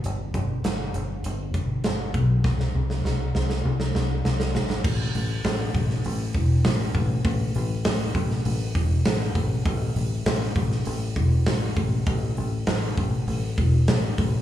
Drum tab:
CC |----------------|----------------|x---------------|----------------|
HH |x-x-x-x-x-x-x-x-|----------------|--o-o-o-o-o-o-o-|o-o-o-o-o-o-o-o-|
SD |----o-------o---|oo-oo-oo-oo-oooo|----o--o----o---|----o--o----o---|
BD |--o-------o---o-|o---------------|o-----o---o---o-|o-----o---o---o-|

CC |----------------|----------------|
HH |o-o-o-o-o-o-o-o-|o-o-o-o-o-o-o-o-|
SD |----o--o----o---|----o-------o---|
BD |o-----o---o---o-|o-----o---o---o-|